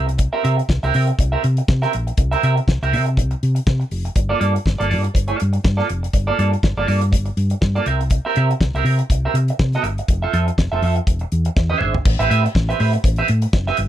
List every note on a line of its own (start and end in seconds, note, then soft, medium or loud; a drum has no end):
0.00 0.26 C2 medium
0.07 muted clean electric guitar stroke soft
0.07 closed hi-hat soft
0.18 muted clean electric guitar stroke soft
0.18 kick loud
0.18 closed hi-hat medium
0.33 0.42 C4 medium
0.33 0.43 G4 medium
0.33 0.43 A#4 medium
0.33 0.44 E5 medium
0.44 0.60 C3 medium
0.44 0.56 C4 medium
0.44 0.56 G4 medium
0.44 0.56 A#4 medium
0.44 0.57 E5 medium
0.44 closed hi-hat medium
0.58 muted clean electric guitar stroke soft
0.58 closed hi-hat soft
0.69 0.78 C2 medium
0.69 muted clean electric guitar stroke soft
0.69 kick medium
0.69 snare loud
0.83 0.90 C2 medium
0.83 0.94 C4 medium
0.83 0.94 G4 medium
0.83 0.95 A#4 medium
0.83 0.95 E5 medium
0.83 closed hi-hat soft
0.94 1.10 C3 loud
0.94 1.07 C4 medium
0.94 1.07 G4 medium
0.94 1.07 A#4 medium
0.94 1.07 E5 medium
0.94 open hi-hat medium
1.08 muted clean electric guitar stroke soft
1.08 closed hi-hat soft
1.19 1.35 C2 loud
1.19 muted clean electric guitar stroke soft
1.19 kick loud
1.19 closed hi-hat medium
1.32 1.42 C4 medium
1.32 1.43 G4 medium
1.32 1.43 A#4 medium
1.32 1.43 E5 medium
1.43 1.60 C3 loud
1.43 muted clean electric guitar stroke soft
1.43 closed hi-hat medium
1.57 muted clean electric guitar stroke soft
1.57 closed hi-hat soft
1.68 1.85 C3 loud
1.68 muted clean electric guitar stroke medium
1.68 kick loud
1.68 snare loud
1.82 1.92 C4 medium
1.82 1.93 G4 medium
1.82 1.93 A#4 medium
1.82 1.93 E5 medium
1.82 snare soft
1.82 closed hi-hat soft
1.93 2.10 A#1 medium
1.93 muted clean electric guitar stroke soft
1.93 closed hi-hat medium
2.07 muted clean electric guitar stroke soft
2.07 closed hi-hat soft
2.17 2.34 C2 loud
2.17 muted clean electric guitar stroke soft
2.17 kick loud
2.17 closed hi-hat medium
2.31 2.42 C4 medium
2.31 2.43 G4 medium
2.31 2.43 A#4 medium
2.31 2.43 E5 medium
2.31 closed hi-hat soft
2.43 2.59 C3 medium
2.43 2.55 C4 medium
2.43 2.55 G4 medium
2.43 2.56 A#4 medium
2.43 2.56 E5 medium
2.43 closed hi-hat medium
2.57 muted clean electric guitar stroke soft
2.57 closed hi-hat soft
2.68 2.76 C2 medium
2.68 muted clean electric guitar stroke soft
2.68 kick medium
2.68 snare medium
2.82 2.95 C2 medium
2.82 2.92 C4 medium
2.82 2.92 G4 medium
2.82 2.93 A#4 medium
2.82 2.93 E5 medium
2.82 closed hi-hat soft
2.93 3.19 C3 loud
2.93 3.05 C4 medium
2.93 3.05 G4 medium
2.93 3.05 A#4 medium
2.93 3.05 E5 medium
2.93 open hi-hat medium
3.06 muted clean electric guitar stroke soft
3.06 closed hi-hat soft
3.17 3.33 C2 medium
3.17 muted clean electric guitar stroke soft
3.17 kick medium
3.17 closed hi-hat medium
3.31 muted clean electric guitar stroke soft
3.31 closed hi-hat soft
3.43 3.58 C3 medium
3.43 closed hi-hat medium
3.55 muted clean electric guitar stroke soft
3.55 closed hi-hat soft
3.67 3.83 C3 medium
3.67 muted clean electric guitar stroke soft
3.67 kick loud
3.67 snare loud
3.80 muted clean electric guitar stroke soft
3.80 closed hi-hat soft
3.91 4.07 F1 loud
3.91 open hi-hat medium
4.05 muted clean electric guitar stroke soft
4.05 closed hi-hat soft
4.16 4.32 G1 loud
4.16 muted clean electric guitar stroke soft
4.16 kick loud
4.16 closed hi-hat medium
4.29 4.39 A#3 medium
4.29 4.39 F4 medium
4.29 4.39 A4 medium
4.29 4.40 D5 medium
4.40 4.57 G2 medium
4.40 4.52 A#3 medium
4.40 4.53 F4 medium
4.40 4.53 A4 medium
4.40 4.53 D5 medium
4.40 closed hi-hat medium
4.55 muted clean electric guitar stroke soft
4.55 closed hi-hat soft
4.66 4.75 G1 medium
4.66 muted clean electric guitar stroke soft
4.66 kick medium
4.66 snare medium
4.78 4.93 G1 medium
4.78 4.88 A#3 medium
4.78 4.89 F4 medium
4.78 4.89 A4 medium
4.78 4.90 D5 medium
4.78 closed hi-hat soft
4.89 5.07 G2 loud
4.89 5.02 A#3 soft
4.89 5.02 F4 medium
4.89 5.02 A4 medium
4.89 5.02 D5 medium
4.89 open hi-hat medium
5.03 muted clean electric guitar stroke soft
5.03 closed hi-hat soft
5.14 5.31 G1 medium
5.14 muted clean electric guitar stroke soft
5.14 kick loud
5.14 closed hi-hat medium
5.28 5.38 A#3 medium
5.28 5.39 F4 medium
5.28 5.39 A4 medium
5.28 5.39 D5 medium
5.28 closed hi-hat soft
5.39 5.57 G2 medium
5.39 muted clean electric guitar stroke soft
5.39 closed hi-hat medium
5.53 muted clean electric guitar stroke soft
5.53 closed hi-hat medium
5.64 5.80 G2 loud
5.64 muted clean electric guitar stroke soft
5.64 kick loud
5.64 snare loud
5.77 5.87 A#3 medium
5.77 5.87 F4 medium
5.77 5.87 A4 medium
5.77 5.88 D5 medium
5.77 snare soft
5.88 6.06 F1 medium
5.88 muted clean electric guitar stroke soft
5.88 closed hi-hat medium
6.03 muted clean electric guitar stroke soft
6.03 closed hi-hat soft
6.13 6.30 G1 medium
6.13 muted clean electric guitar stroke soft
6.13 kick loud
6.13 closed hi-hat medium
6.27 6.37 A#3 medium
6.27 6.38 F4 medium
6.27 6.38 A4 medium
6.27 6.38 D5 medium
6.38 6.54 G2 loud
6.38 6.50 A#3 medium
6.38 6.51 F4 medium
6.38 6.51 A4 medium
6.38 6.51 D5 medium
6.38 closed hi-hat medium
6.52 muted clean electric guitar stroke soft
6.52 closed hi-hat soft
6.63 6.72 G1 medium
6.63 muted clean electric guitar stroke soft
6.63 kick medium
6.63 snare loud
6.77 6.84 G1 medium
6.77 6.86 A#3 medium
6.77 6.86 F4 medium
6.77 6.87 A4 medium
6.77 6.87 D5 medium
6.87 7.14 G2 loud
6.87 7.00 A#3 medium
6.87 7.00 F4 medium
6.87 7.00 A4 medium
6.87 7.00 D5 medium
6.87 open hi-hat medium
7.01 muted clean electric guitar stroke soft
7.01 closed hi-hat soft
7.12 7.29 G1 medium
7.12 muted clean electric guitar stroke soft
7.12 kick loud
7.12 closed hi-hat medium
7.25 muted clean electric guitar stroke soft
7.25 closed hi-hat soft
7.37 7.53 G2 medium
7.37 closed hi-hat medium
7.50 muted clean electric guitar stroke soft
7.50 closed hi-hat medium
7.61 7.78 G2 medium
7.61 muted clean electric guitar stroke soft
7.61 kick loud
7.61 snare loud
7.75 7.86 A#3 medium
7.75 7.87 F4 medium
7.75 7.87 A4 medium
7.75 7.87 D5 medium
7.75 closed hi-hat soft
7.86 8.18 C2 medium
7.86 7.99 C4 medium
7.86 7.99 G4 medium
7.86 7.99 A#4 medium
7.86 7.99 E5 medium
7.86 closed hi-hat medium
8.01 muted clean electric guitar stroke soft
8.01 closed hi-hat soft
8.10 muted clean electric guitar stroke soft
8.10 kick loud
8.10 closed hi-hat medium
8.25 8.36 C4 medium
8.25 8.36 G4 medium
8.25 8.36 A#4 medium
8.25 8.37 E5 medium
8.36 8.52 C3 medium
8.36 8.49 C4 medium
8.36 8.49 G4 medium
8.36 8.49 A#4 medium
8.36 8.49 E5 medium
8.36 closed hi-hat medium
8.51 muted clean electric guitar stroke soft
8.51 closed hi-hat soft
8.61 8.69 C2 loud
8.61 muted clean electric guitar stroke soft
8.61 kick medium
8.61 snare loud
8.74 8.81 C2 medium
8.74 8.84 C4 medium
8.74 8.85 G4 medium
8.74 8.85 A#4 medium
8.74 8.85 E5 medium
8.74 closed hi-hat soft
8.85 9.01 C3 loud
8.85 8.97 C4 soft
8.85 8.98 G4 medium
8.85 8.98 A#4 medium
8.85 8.98 E5 medium
8.85 open hi-hat medium
8.99 muted clean electric guitar stroke soft
8.99 closed hi-hat soft
9.10 9.26 C2 medium
9.10 muted clean electric guitar stroke soft
9.10 kick loud
9.10 closed hi-hat medium
9.25 9.35 C4 medium
9.25 9.35 G4 medium
9.25 9.35 A#4 medium
9.25 9.36 E5 medium
9.34 9.50 C3 medium
9.34 muted clean electric guitar stroke soft
9.34 closed hi-hat medium
9.48 muted clean electric guitar stroke medium
9.48 closed hi-hat soft
9.59 9.76 C3 medium
9.59 muted clean electric guitar stroke soft
9.59 kick loud
9.59 snare loud
9.73 9.84 C4 medium
9.73 9.85 G4 medium
9.73 9.85 A#4 medium
9.73 9.85 E5 medium
9.73 snare soft
9.73 closed hi-hat soft
9.83 9.99 G1 medium
9.83 muted clean electric guitar stroke soft
9.83 closed hi-hat medium
9.98 muted clean electric guitar stroke soft
9.98 closed hi-hat soft
10.08 10.25 F1 medium
10.08 muted clean electric guitar stroke soft
10.08 kick loud
10.08 closed hi-hat medium
10.22 10.32 C4 medium
10.22 10.33 F4 medium
10.22 10.33 A4 medium
10.22 10.33 E5 medium
10.33 10.49 F2 medium
10.33 10.45 C4 medium
10.33 10.46 F4 medium
10.33 10.46 A4 medium
10.33 10.46 E5 medium
10.33 closed hi-hat medium
10.48 muted clean electric guitar stroke soft
10.48 closed hi-hat soft
10.58 10.67 F1 loud
10.58 muted clean electric guitar stroke soft
10.58 kick medium
10.58 snare medium
10.72 10.79 F1 medium
10.72 10.82 C4 medium
10.72 10.82 F4 medium
10.72 10.82 A4 medium
10.72 10.83 E5 medium
10.82 10.98 F2 loud
10.82 10.95 C4 medium
10.82 10.95 F4 medium
10.82 10.95 A4 medium
10.82 10.95 E5 medium
10.82 open hi-hat medium
10.96 muted clean electric guitar stroke soft
10.96 closed hi-hat soft
11.07 11.23 E1 medium
11.07 muted clean electric guitar stroke soft
11.07 kick loud
11.07 closed hi-hat medium
11.19 muted clean electric guitar stroke soft
11.19 closed hi-hat soft
11.32 11.48 E2 medium
11.32 closed hi-hat medium
11.45 muted clean electric guitar stroke soft
11.45 closed hi-hat medium
11.56 11.73 E2 loud
11.56 muted clean electric guitar stroke soft
11.56 kick loud
11.56 snare medium
11.70 11.80 D4 medium
11.70 11.80 G#4 medium
11.70 11.81 C5 medium
11.70 11.81 E5 medium
11.70 high tom medium
11.81 11.97 G#1 medium
11.81 11.93 D4 medium
11.81 11.94 G#4 medium
11.81 11.94 C5 medium
11.81 11.94 E5 medium
11.81 mid tom medium
11.94 muted clean electric guitar stroke soft
11.94 floor tom medium
12.05 12.15 A1 loud
12.05 muted clean electric guitar stroke soft
12.05 kick loud
12.05 crash loud
12.19 12.27 A1 loud
12.19 12.28 C4 medium
12.19 12.29 G4 medium
12.19 12.29 B4 medium
12.19 12.30 E5 loud
12.19 closed hi-hat soft
12.29 12.46 A2 medium
12.29 12.42 C4 medium
12.29 12.43 G4 medium
12.29 12.42 B4 medium
12.29 12.43 E5 medium
12.29 closed hi-hat medium
12.45 muted clean electric guitar stroke soft
12.45 closed hi-hat soft
12.55 12.71 A1 loud
12.55 muted clean electric guitar stroke soft
12.55 kick loud
12.55 snare loud
12.69 12.79 C4 medium
12.69 12.79 G4 medium
12.69 12.80 B4 medium
12.69 12.79 E5 medium
12.69 closed hi-hat soft
12.80 12.96 A2 loud
12.80 12.92 C4 medium
12.80 12.92 G4 medium
12.80 12.92 B4 medium
12.80 12.92 E5 medium
12.80 open hi-hat medium
12.93 muted clean electric guitar stroke soft
12.93 closed hi-hat soft
13.04 13.20 A1 loud
13.04 muted clean electric guitar stroke soft
13.04 kick loud
13.04 closed hi-hat medium
13.16 13.28 C4 medium
13.16 13.28 G4 medium
13.16 13.28 B4 medium
13.16 13.28 E5 medium
13.16 closed hi-hat soft
13.28 13.45 A2 loud
13.28 muted clean electric guitar stroke soft
13.28 closed hi-hat medium
13.42 muted clean electric guitar stroke soft
13.42 closed hi-hat medium
13.53 13.69 F#1 loud
13.53 muted clean electric guitar stroke soft
13.53 kick loud
13.53 snare loud
13.67 13.77 C4 medium
13.67 13.77 G4 medium
13.67 13.78 B4 medium
13.67 13.78 E5 loud
13.67 snare soft
13.77 13.88 G1 medium
13.77 muted clean electric guitar stroke soft
13.77 closed hi-hat medium